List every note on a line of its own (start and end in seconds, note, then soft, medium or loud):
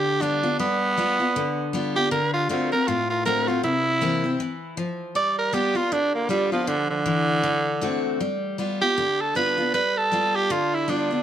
0.00 0.56 D3 medium
0.00 0.23 G4 loud
0.21 0.43 G3 medium
0.21 0.43 B3 medium
0.21 0.58 D4 medium
0.21 0.42 F4 medium
0.43 0.59 B3 medium
0.43 0.59 F4 medium
0.59 0.96 G3 medium
0.59 1.70 B3 loud
0.97 1.19 G3 medium
0.97 1.19 B3 medium
0.97 1.19 F4 loud
1.20 1.35 B3 medium
1.20 1.35 F4 medium
1.36 2.09 D3 medium
1.73 1.95 G3 medium
1.73 1.95 B3 medium
1.73 1.95 F4 medium
1.96 2.11 B3 medium
1.96 2.11 F4 medium
1.96 2.11 G4 loud
2.11 2.48 D3 medium
2.11 2.33 A#4 loud
2.33 2.49 F4 medium
2.49 2.71 D3 medium
2.49 2.71 A3 medium
2.49 2.71 C4 medium
2.49 2.72 F4 medium
2.49 2.71 F#4 medium
2.72 2.87 C4 soft
2.72 2.87 F#4 medium
2.72 2.89 A#4 loud
2.88 3.61 A2 medium
2.88 3.09 F4 loud
3.10 3.25 F4 loud
3.25 3.47 D3 medium
3.25 3.47 A3 medium
3.25 3.48 C4 medium
3.25 3.47 F#4 loud
3.25 3.49 A#4 loud
3.48 3.64 C4 medium
3.48 3.63 F4 medium
3.48 3.63 F#4 medium
3.63 4.36 C3 medium
3.63 4.37 E4 loud
4.01 4.23 E3 medium
4.01 4.23 A#3 medium
4.01 4.24 C4 medium
4.01 4.23 E4 medium
4.24 4.40 C4 medium
4.24 4.39 E4 medium
4.40 4.76 E3 medium
4.77 5.14 F3 medium
5.15 5.51 G3 medium
5.15 5.37 D5 loud
5.38 5.55 A#4 loud
5.53 5.75 G3 medium
5.53 5.75 B3 medium
5.53 5.74 F4 loud
5.53 5.78 G4 loud
5.75 5.91 B3 medium
5.75 5.90 F4 medium
5.75 5.94 F4 loud
5.92 6.65 D3 medium
5.92 6.14 D4 loud
6.15 6.29 A#3 medium
6.29 6.51 G3 medium
6.29 6.52 G3 loud
6.29 6.51 B3 medium
6.29 6.51 F4 medium
6.52 6.69 F3 medium
6.52 6.68 B3 medium
6.52 6.67 F4 medium
6.67 6.89 D3 loud
6.67 7.04 F3 medium
6.90 8.01 D3 loud
7.06 7.42 E3 medium
7.43 7.80 D3 loud
7.81 8.19 D3 medium
7.81 8.19 A3 medium
7.81 8.19 C4 medium
7.81 8.19 F#4 medium
8.20 8.57 G3 medium
8.58 8.80 G3 medium
8.58 8.81 B3 medium
8.58 8.80 F4 medium
8.81 8.97 B3 soft
8.81 8.96 F4 medium
8.81 9.22 G4 loud
8.98 9.71 D3 medium
9.21 9.36 A4 loud
9.35 9.57 G3 medium
9.35 9.57 B3 medium
9.35 9.57 F4 medium
9.35 9.71 B4 loud
9.58 9.74 B3 medium
9.58 9.73 F4 medium
9.74 10.10 G3 medium
9.74 9.99 B4 loud
9.97 10.37 A4 loud
10.12 10.48 G3 medium
10.12 10.49 B3 medium
10.12 10.49 F4 medium
10.36 10.53 G4 loud
10.50 11.23 D3 medium
10.50 10.76 F4 medium
10.74 10.91 E4 medium
10.88 11.10 G3 medium
10.88 11.10 B3 medium
10.88 11.23 D4 medium
10.88 11.09 F4 medium
11.11 11.23 B3 medium
11.11 11.23 F4 medium